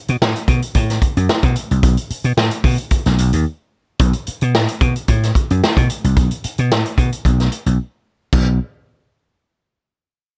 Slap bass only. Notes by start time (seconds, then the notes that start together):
0.09 B2
0.22 A2
0.48 B2
0.75 A2
1.17 F#2
1.44 B2
1.71 C2
1.84 B1
2.11 muted slap bass stroke
2.24 B2
2.37 A2
2.64 B2
3.06 B1
3.19 B1
3.33 D#2
4.00 B1
4.28 muted slap bass stroke
4.42 B2
4.54 A2
4.81 B2
5.09 A2
5.51 F#2
5.77 B2
6.04 C2
6.17 B1
6.45 muted slap bass stroke
6.59 B2
6.71 A2
6.98 B2
7.25 B1
7.66 B1
8.33 B1